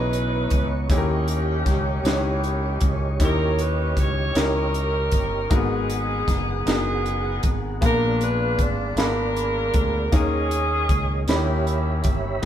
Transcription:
Already playing: B1 C#3 E3 B3 C#4 D#4 E4 G#4 B4 C#5 D#5 A#5 C#6
0.13 closed hi-hat
0.50 C#2, kick, closed hi-hat
0.89 D#2 D#3 A#3 C#4 D#4 E4 G4 G#4 D#5, kick, closed hi-hat
0.94 G4 A#4
1.28 closed hi-hat
1.66 C#2, kick, snare, closed hi-hat
2.04 C#2 A#3 C#4 D#4 E4 G4 B4, snare, closed hi-hat
2.08 G4
2.13 C#5
2.44 closed hi-hat
2.81 C#2, kick, closed hi-hat
3.20 D#2 D#3 C#4 D#4 E4 G4 A#4 C#5, kick, closed hi-hat
3.59 B4, closed hi-hat
3.97 C#2 C#5, kick, closed hi-hat
4.35 C#2 C#4 D#4 E4 G4 A#4, snare, closed hi-hat
4.74 closed hi-hat
5.12 G1, kick, closed hi-hat
5.50 G#1 G#2 A#3 B3 D#4 F#4 G#4 A#4 F#5, kick, closed hi-hat
5.54 B3 G#4
5.90 closed hi-hat
6.28 F#1, kick, snare, closed hi-hat
6.66 F#1 B3 D#4 F#4 G#4 A#4, snare, closed hi-hat
6.70 G#4
7.06 closed hi-hat
7.43 G#1, kick, closed hi-hat
7.81 A#1 A#2 A#3 B3 D4 F4 G#4 A#4 D5, kick, closed hi-hat
8.21 B4, closed hi-hat
8.59 G#1 D5, kick, closed hi-hat
8.96 G#1 B3 D4 F4 G#4 A#4 B5, snare, closed hi-hat
9.36 closed hi-hat
9.74 D2, kick, closed hi-hat
10.12 D#2 D#3 A#3 C#4 D#4 G#4 A#4 C#5 D#5, kick, closed hi-hat
10.51 closed hi-hat
10.89 C#2, kick, closed hi-hat
11.28 D#2 D#3 A#3 C#4 D#4 E4 G4 C#5 E5 B5, snare, closed hi-hat
11.67 closed hi-hat
12.04 G1, kick, closed hi-hat

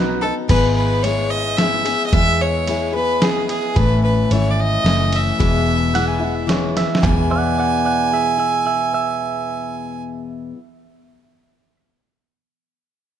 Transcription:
Already playing: B1 F#3 B3 D#4 F#4 B4
0.21 B3 D#4 F#4 A4
0.48 G#1 G#3 B3 E4 G#4 B4, kick, crash, ride
0.76 B4
1.03 G#3 B3 E4 C#5, ride
1.07 G#4
1.30 D#5
1.57 G#3 B3 E4 E5, snare, ride
1.61 G#4
1.85 B3 E4 G#4, ride
2.06 D#5
2.12 E2 G#3 B3 E4 G#4 E5, kick, ride
2.42 C#5
2.67 G#3 B3 E4 G#4, ride
2.93 B3 E4 G#4 B4
3.20 G#3 B3 E4 G#4, snare, ride
3.49 G#4, ride
3.76 A1 A2 E3 A3 C#4 E4 B4, kick, ride
4.03 B4
4.30 G#1 E3 A3 C#4 E4 C#5, ride
4.50 D5
4.60 D#5
4.84 F#1 E3 A3 C#4 E4, snare, ride
5.12 E5, ride
5.38 E1 E2 B2 E3 G#3 B3 E4, kick, ride
5.93 E3 G#3 B3 E4 F#5, ride
6.08 G#5
6.19 E3 G#3 B3 E4
6.24 F#5
6.35 E5
6.47 E3 G#3 B3 E4 C#5, snare, ride
6.77 E5, snare, ride
6.95 snare
7.01 E2 B2 E3 G#5, kick, clap, floor tom
7.06 G#3 B3 E4
7.31 D5 F#5
7.58 D5 F#5
7.85 D5 F#5
8.13 G#4 E5
8.38 G#4 E5
8.66 G#4 E5
8.94 E5

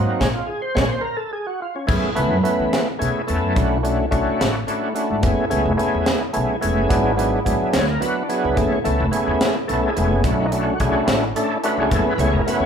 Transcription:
Already playing: F#3 A#3 C4 D#4 F#4
0.20 A#1 G#3 A#3 C#4 C#5, kick, snare
0.35 F4
0.46 G#4
0.62 C5
0.75 A#1 G#3 A#3 C#4 C#5, kick, snare
0.88 C5
1.01 A#4
1.17 A4
1.33 G#4
1.47 F#4
1.62 F4
1.76 C#4
1.87 F#2 A3 B3 C#4 E4 G#4, kick, crash
2.04 muted upright bass stroke
2.15 C#2 A3 B3 C#4 E4 B4, closed hi-hat
2.31 F#2
2.43 A3 B3 C#4 E4 B4, muted upright bass stroke, closed hi-hat
2.60 E3
2.73 snare, closed hi-hat
2.99 B2 A3 B3 C#4 E4 G#4, closed hi-hat
3.27 E2 A3 B3 C#4 E4 A4, closed hi-hat
3.43 F#2
3.55 B1 A3 C#4 D4 E4 F#4, kick, closed hi-hat
3.83 A3 C#4 D4 E4 F#4, closed hi-hat
4.11 B1 A3 C#4 D4 E4 F#4, kick, closed hi-hat
4.26 muted upright bass stroke
4.41 A1, snare, closed hi-hat
4.67 A3 C#4 D4 E4 F#4, closed hi-hat
4.84 A3
4.95 A3 C#4 D4 E4 F#4, closed hi-hat
5.10 G#2 E4
5.22 F#1 A3 B3 C#4 E4 G#4, kick, closed hi-hat
5.39 muted upright bass stroke
5.50 C#2 A3 B3 C#4 E4 G#4, closed hi-hat
5.65 F#1
5.77 A3 B3 C#4 E4 G#4, closed hi-hat
5.95 E2
6.06 snare, closed hi-hat
6.33 B1 A3 B3 C#4 E4 G#4, closed hi-hat
6.61 E1 A3 B3 C#4 E4 G#4, closed hi-hat
6.78 F#1
6.89 G#1 F#3 B3 D4 E4 G#4, kick, closed hi-hat
7.17 F#3 B3 D4 E4 G#4, closed hi-hat
7.45 G#1 F#3 B3 D4 E4 G#4, kick, closed hi-hat
7.62 muted upright bass stroke
7.73 D2 C#5, snare, closed hi-hat
7.90 A#4
8.00 F#3 B3 D4 E4 F#4 B4, closed hi-hat
8.18 D4
8.29 F#3 B3 D4 E4 G#4, closed hi-hat
8.34 F#4
8.44 C#2 B4
8.56 F#1 A3 B3 C#4 E4 G#4, kick, closed hi-hat
8.61 A4
8.72 C#5, muted upright bass stroke
8.84 C#2 A3 B3 C#4 E4 A4, closed hi-hat
9.00 F#1
9.11 A3 B3 C#4 E4 G#4, closed hi-hat
9.27 E2
9.41 snare, closed hi-hat
9.67 B1 A3 B3 C#4 E4 A4, closed hi-hat
9.83 G#4
9.96 E1 A3 B3 C#4 E4 G#4, closed hi-hat
10.11 F#1 C#4
10.24 B1 A3 C#4 D4 E4 F#4, kick, closed hi-hat
10.39 D#4
10.52 A3 C#4 D4 E4 F#4, closed hi-hat
10.69 F#4
10.80 B1 A3 C#4 D4 E4 F#4 G#4, kick, closed hi-hat
10.95 muted upright bass stroke
11.07 A1, snare, closed hi-hat
11.36 A3 C#4 D4 E4 A4, closed hi-hat
11.63 A3 C#4 D4 E4 F#4 B4, closed hi-hat
11.78 C#2 G#4
11.91 F#1 A3 B3 C#4 E4 G#4 A4, kick, closed hi-hat
12.05 B4, muted upright bass stroke
12.18 C#2 A3 B3 C#4 E4 G#4 C#5, closed hi-hat
12.32 F#1 A#4
12.46 A3 B3 C#4 E4 F#4 B4, muted upright bass stroke, closed hi-hat
12.59 E2 C#5

